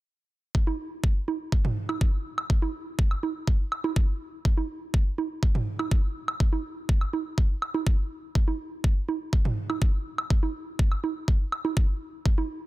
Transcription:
0.55 kick loud
0.67 high conga medium
1.04 kick loud
1.28 high conga medium
1.52 kick loud
1.65 mid tom medium
1.89 high conga medium
1.89 high woodblock medium
2.01 kick loud
2.38 high woodblock medium
2.50 kick loud
2.62 high conga medium
2.99 kick loud
3.11 high woodblock medium
3.23 high conga medium
3.47 kick loud
3.72 high woodblock medium
3.84 high conga medium
3.96 kick loud
4.45 kick loud
4.57 high conga medium
4.94 kick loud
5.18 high conga medium
5.43 kick loud
5.55 mid tom medium
5.79 high conga medium
5.79 high woodblock medium
5.91 kick loud
6.28 high woodblock medium
6.40 kick loud
6.53 high conga medium
6.89 kick loud
7.01 high woodblock medium
7.13 high conga medium
7.38 kick loud
7.62 high woodblock medium
7.74 high conga medium
7.87 kick loud
8.35 kick loud
8.48 high conga medium
8.84 kick loud
9.09 high conga medium
9.33 kick loud
9.45 mid tom medium
9.70 high conga medium
9.70 high woodblock medium
9.82 kick loud
10.18 high woodblock medium
10.30 kick loud
10.43 high conga medium
10.79 kick loud
10.92 high woodblock medium
11.04 high conga medium
11.28 kick loud
11.52 high woodblock medium
11.65 high conga medium
11.77 kick loud
12.26 kick loud
12.38 high conga medium

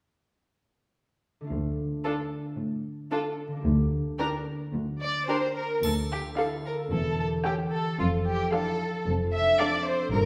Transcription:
1.41 3.46 D3 soft
1.41 3.65 A3 soft
1.41 3.55 D4 soft
1.47 3.65 F4 soft
1.51 1.94 D2 soft
2.05 2.14 D4 soft
2.05 2.13 F4 soft
2.05 2.13 A4 soft
2.58 3.00 A2 soft
3.11 3.20 D4 soft
3.11 3.19 F4 soft
3.11 3.20 A4 soft
3.48 5.77 D3 soft
3.52 5.79 A#3 soft
3.57 6.89 D4 soft
3.61 4.08 D2 medium
3.61 5.84 G4 soft
3.66 4.08 D2 medium
4.19 4.28 D4 soft
4.19 4.27 G4 soft
4.19 4.27 A#4 soft
4.73 5.16 D2 medium
5.00 5.26 D5 medium
5.28 5.36 D4 soft
5.28 5.36 G4 soft
5.28 5.36 A#4 soft
5.28 5.55 C5 medium
5.56 5.83 A#4 medium
5.83 6.26 D2 medium
5.83 6.94 D3 soft
5.83 5.92 A4 medium
5.83 triangle soft
6.02 6.73 A4 soft
6.12 6.20 G4 medium
6.20 6.55 F4 soft
6.37 6.78 D4 soft
6.37 6.68 E4 soft
6.37 6.78 A4 soft
6.37 6.46 A4 medium
6.37 6.78 F5 soft
6.56 6.94 F4 soft
6.66 6.74 A#4 medium
6.74 7.09 A4 soft
6.90 7.34 E1 medium
6.90 7.33 E2 soft
6.90 8.02 E3 soft
6.90 7.18 A4 medium
7.10 7.80 A4 soft
7.19 7.27 A4 medium
7.27 7.62 G4 soft
7.45 7.86 C#4 soft
7.45 7.76 F4 soft
7.45 7.53 G4 medium
7.45 7.86 A4 soft
7.45 7.86 G5 soft
7.63 8.01 G4 soft
7.72 7.99 A4 medium
7.82 8.16 A4 soft
7.98 8.42 F1 medium
7.98 8.41 F2 medium
7.98 9.05 F3 soft
7.98 8.07 F4 medium
8.18 8.88 A4 soft
8.26 8.52 G4 medium
8.35 8.69 F4 soft
8.53 8.93 D4 soft
8.53 8.83 E4 soft
8.53 8.93 A4 soft
8.53 9.05 A4 medium
8.53 8.93 F5 soft
8.70 9.23 F4 soft
8.89 9.93 A4 soft
9.06 9.49 F1 medium
9.06 9.48 F2 soft
9.06 10.14 F3 soft
9.24 9.76 F4 soft
9.33 9.58 E5 medium
9.42 10.25 D4 soft
9.59 9.90 C4 soft
9.59 9.99 D4 soft
9.59 10.00 A4 medium
9.59 9.86 D5 medium
9.59 9.99 F5 medium
9.78 10.15 F4 soft
9.85 10.12 C5 medium
9.94 10.14 A4 soft
10.12 10.25 G1 medium
10.12 10.25 G2 medium
10.12 10.25 A#4 medium

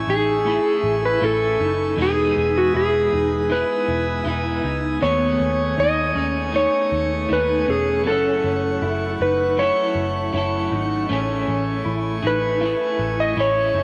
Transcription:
0.00 0.43 A3 medium
0.00 1.94 A3 medium
0.00 0.46 C#4 medium
0.00 0.48 E4 medium
0.00 0.49 G#4 medium
0.00 8.01 G#5 medium
0.00 1.94 C#6 medium
0.00 4.97 E6 medium
0.07 0.58 A1 medium
0.07 0.46 D#4 medium
0.07 1.05 G#4 medium
0.45 1.19 A3 medium
0.45 1.21 C#4 medium
0.45 1.21 E4 medium
0.49 1.24 E4 medium
0.49 2.03 G#4 medium
0.84 1.17 A1 medium
1.05 1.24 B4 medium
1.21 1.55 A1 medium
1.21 1.97 A3 medium
1.21 1.98 C#4 medium
1.21 1.60 E4 medium
1.21 2.01 E4 medium
1.21 2.01 A4 medium
1.60 1.94 F#1 medium
1.60 1.96 D#4 medium
1.96 2.32 E1 medium
1.96 3.49 E3 medium
1.96 3.49 G#3 medium
1.96 2.74 D#4 medium
1.96 4.99 B4 medium
1.96 8.02 D#6 medium
2.00 3.51 B3 medium
2.00 3.53 D#4 medium
2.00 2.59 G#4 medium
2.00 3.54 G#4 medium
2.37 2.70 E1 medium
2.58 2.76 F#4 medium
2.73 3.08 E1 medium
2.73 3.12 E4 medium
2.73 3.53 G#4 medium
3.12 3.63 E1 medium
3.12 3.50 D#4 medium
3.50 4.24 G#3 medium
3.50 4.27 B3 medium
3.50 4.28 D#4 medium
3.50 4.25 E4 medium
3.50 4.61 B4 medium
3.54 4.29 G#4 medium
3.88 4.22 E1 medium
4.25 4.59 E1 medium
4.25 5.02 G#3 medium
4.25 5.02 B3 medium
4.25 5.03 D#4 medium
4.25 4.64 E4 medium
4.30 5.04 G#4 medium
4.64 4.97 C#2 medium
4.64 5.01 D#4 medium
5.01 5.36 D#2 medium
5.01 6.15 D#3 medium
5.01 6.19 A3 medium
5.01 13.83 A3 medium
5.01 5.77 B3 medium
5.01 6.16 B3 medium
5.01 6.17 D#4 medium
5.01 6.15 G#4 medium
5.01 5.79 C#5 medium
5.01 13.83 C#6 medium
5.40 5.73 D#2 medium
5.78 6.11 D#2 medium
5.78 6.15 D#4 medium
5.78 6.55 D#5 medium
6.15 6.66 D#2 medium
6.15 6.53 C#4 medium
6.15 6.54 D#4 soft
6.15 6.54 G#4 soft
6.21 6.53 B3 soft
6.52 7.28 A3 medium
6.52 7.29 B3 medium
6.52 7.28 D#4 medium
6.52 7.31 D#4 medium
6.52 7.32 C#5 medium
6.57 7.31 G#4 medium
6.92 7.25 D#2 medium
7.29 7.64 D#2 medium
7.29 8.03 A3 medium
7.29 8.06 B3 medium
7.29 7.67 D#4 medium
7.33 8.07 D#4 medium
7.33 8.08 G#4 medium
7.33 7.70 B4 medium
7.67 8.07 E1 medium
7.67 8.04 C#4 medium
7.67 8.04 G#4 medium
8.04 8.40 F#1 medium
8.04 9.56 F#3 medium
8.04 8.81 C#4 medium
8.04 9.58 C#4 medium
8.04 9.21 A4 medium
8.04 11.06 F#5 medium
8.10 9.60 E4 medium
8.10 9.62 A4 medium
8.44 8.77 F#1 medium
8.82 9.15 F#1 medium
8.82 9.20 E4 medium
9.20 9.70 F#1 medium
9.20 9.58 D#4 medium
9.20 9.60 B4 medium
9.57 10.31 F#3 medium
9.57 10.34 C#4 medium
9.57 10.32 E4 medium
9.57 10.35 E4 medium
9.57 10.68 C#5 medium
9.62 10.37 A4 medium
9.95 10.29 F#1 loud
10.33 10.67 F#1 medium
10.33 11.09 F#3 medium
10.33 11.11 C#4 medium
10.33 10.71 E4 medium
10.33 11.11 E4 medium
10.37 11.12 A4 medium
10.72 11.05 G#1 medium
10.72 11.09 D#4 medium
11.09 11.44 A1 medium
11.09 12.23 A3 medium
11.09 11.85 C#4 medium
11.09 12.24 C#4 medium
11.09 12.25 E4 medium
11.09 12.22 G#4 medium
11.09 13.83 G#5 medium
11.48 11.81 A1 medium
11.85 12.19 A1 medium
11.85 12.23 E4 medium
12.22 12.74 A1 medium
12.22 12.61 D#4 medium
12.22 12.62 E4 soft
12.22 12.61 G#4 soft
12.27 12.61 C#4 soft
12.27 13.23 B4 medium
12.60 13.35 A3 medium
12.60 13.38 C#4 medium
12.60 13.35 E4 medium
12.60 13.40 E4 medium
12.66 13.39 G#4 medium
12.99 13.33 A1 medium
13.20 13.37 D#5 medium
13.36 13.70 A1 medium
13.36 13.83 A3 soft
13.36 13.83 C#4 medium
13.36 13.75 E4 medium
13.36 13.83 E4 medium
13.36 13.83 C#5 medium
13.41 13.83 G#4 medium
13.74 13.83 F#1 medium
13.74 13.83 D#4 medium

